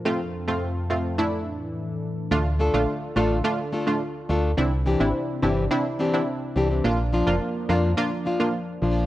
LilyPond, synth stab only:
\new Staff \with { instrumentName = "Synth stab" } { \time 4/4 \key d \minor \tempo 4 = 106 <a c' f'>16 r8 <a c' f'>8. <a c' f'>8 <a d' e'>4.~ <a d' e'>16 r16 | <a d' f'>16 r8 <a d' f'>8. <a d' f'>8 <a d' f'>16 r8 <a d' f'>16 r4 | <c' d' e'>16 r8 <c' d' e'>8. <c' d' e'>8 <c' d' e'>16 r8 <c' d' e'>16 r4 | <bes d' f'>16 r8 <bes d' f'>8. <bes d' f'>8 <bes d' f'>16 r8 <bes d' f'>16 r4 | }